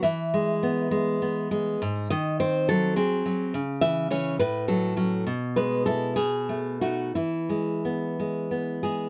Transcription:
\new Staff \with { instrumentName = "Nylon-string guitar" } { \time 6/8 \key e \major \tempo 4. = 68 << { e''2~ e''8 r8 | r8 dis''8 bis'8 a'8 gis'4 | r8 e''8 cis''8 b'8 a'4 | r8 b'8 a'8 gis'4 fis'8 |
e'2~ e'8 gis'8 | } \\ { e8 gis8 b8 gis8 b8 gis8 | gis,8 dis8 bis8 fis8 bis8 fis8 | cis8 e8 <e cis'>8 a,8 fis8 <fis cis'>8 | b,8 gis8 <gis e'>8 b,8 a8 <a dis'>8 |
e8 gis8 b8 gis8 b8 gis8 | } >> }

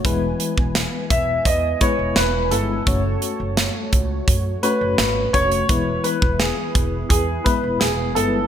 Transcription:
<<
  \new Staff \with { instrumentName = "Grand piano" } { \time 4/4 \key e \major \tempo 4 = 85 r4. e''8 dis''8 cis''8 b'8 a'8~ | a'4. r4 b'4 cis''8~ | cis''8 b'8 gis'4 gis'8 b'8 gis'8 a'8 | }
  \new Staff \with { instrumentName = "Analog polysynth" } { \time 4/4 \key e \major <b b' gis''>1 | <a fis' cis''>1 | <b e' b'>1 | }
  \new Staff \with { instrumentName = "FM electric piano" } { \time 4/4 \key e \major <e gis b e' b'>4. r4 <gis b e' b'>4 <gis b e' b'>8 | <a cis' fis' cis''>4. r4 <a cis' fis' cis''>4 <a cis' fis' cis''>8 | <e gis b e' b'>4. r4 <gis b e' b'>4 <gis b e' b'>8 | }
  \new Staff \with { instrumentName = "Upright bass" } { \clef bass \time 4/4 \key e \major e,,8 r16 e,,8 r16 e,,8 e,8 r16 e,,16 e,,8 g,,8 | fis,,8 r16 fis,,8 r16 cis,8 fis,8 r16 fis,,16 gis,,8 f,,8 | e,,8 r16 e,,8 r16 e,,8 e,8 r16 e,,16 e,,8 g,,8 | }
  \new DrumStaff \with { instrumentName = "Drums" } \drummode { \time 4/4 <hh bd>8 hh16 bd16 <hh sn>8 <hh bd>8 <hh bd>8 <hh bd>8 <hh sn>8 hh8 | <hh bd>8 hh8 <hh sn>8 <hh bd>8 <hh bd>8 hh8 <hh sn>8 <hh bd>16 hh16 | <hh bd>8 hh16 bd16 <hh sn>8 <hh bd>8 <hh bd>8 <hh bd>8 <hh sn>8 hh8 | }
>>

